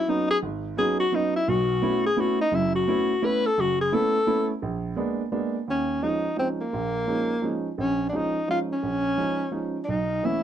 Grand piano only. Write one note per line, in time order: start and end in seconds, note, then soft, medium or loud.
0.08 0.31 F#3 medium
0.08 0.31 B3 soft
0.08 0.32 C#4 soft
0.08 0.32 D#4 medium
0.43 0.73 G#1 medium
0.77 1.01 F#3 medium
0.77 1.01 B3 medium
0.77 1.01 C#4 medium
0.77 1.01 D#4 medium
1.12 1.35 F#3 medium
1.12 1.36 B3 soft
1.12 1.36 C#4 soft
1.12 1.36 D#4 medium
1.48 1.77 B1 medium
1.48 1.78 B2 medium
1.82 2.05 A3 medium
1.82 2.06 B3 medium
1.82 2.06 C#4 medium
1.82 2.06 E4 medium
2.17 2.40 A3 medium
2.17 2.40 B3 medium
2.17 2.41 C#4 soft
2.17 2.41 E4 medium
2.52 2.82 F#1 medium
2.52 2.82 F#2 medium
2.88 3.11 A3 medium
2.88 3.11 B3 soft
2.88 3.11 C#4 medium
2.88 3.11 E4 medium
3.22 3.46 A3 medium
3.22 3.46 B3 medium
3.22 3.46 C#4 medium
3.22 3.46 E4 medium
3.58 3.87 F#1 medium
3.92 4.15 A3 medium
3.92 4.16 B3 medium
3.92 4.16 C#4 medium
3.92 4.16 E4 medium
4.27 4.50 A3 medium
4.27 4.50 B3 soft
4.27 4.51 C#4 medium
4.27 4.50 E4 medium
4.62 4.92 A#1 medium
4.96 5.20 G#3 medium
4.96 5.20 A#3 medium
4.96 5.20 B3 medium
4.96 5.20 D4 medium
5.32 5.55 G#3 medium
5.32 5.55 A#3 medium
5.32 5.55 B3 medium
5.32 5.55 D4 medium
5.68 5.97 D#2 medium
6.02 6.26 F3 medium
6.02 6.25 G#3 soft
6.02 6.26 C#4 soft
6.02 6.26 D#4 medium
6.36 6.60 F3 soft
6.36 6.60 G#3 soft
6.36 6.60 C#4 soft
6.36 6.61 D#4 medium
6.73 7.02 A#1 medium
6.73 7.03 A#2 medium
7.07 7.30 F3 soft
7.07 7.30 G#3 soft
7.07 7.30 C#4 soft
7.07 7.31 D#4 medium
7.42 7.65 F3 soft
7.42 7.65 G#3 soft
7.42 7.66 C#4 soft
7.42 7.66 D#4 medium
7.78 8.08 A#1 medium
8.13 8.36 F3 medium
8.13 8.36 G#3 soft
8.13 8.36 C#4 soft
8.13 8.36 D#4 medium
8.48 8.71 F3 soft
8.48 8.71 G#3 soft
8.48 8.71 C#4 soft
8.48 8.71 D#4 soft
8.83 9.13 A#1 medium
9.17 9.41 F3 soft
9.17 9.40 G#3 soft
9.17 9.41 C#4 soft
9.17 9.41 D#4 medium
9.52 9.75 F3 soft
9.52 9.75 G#3 soft
9.52 9.76 C#4 soft
9.52 9.75 D#4 medium
9.88 10.18 B1 medium
10.23 10.43 E3 soft
10.23 10.43 A3 soft
10.23 10.43 B3 soft
10.23 10.43 C#4 medium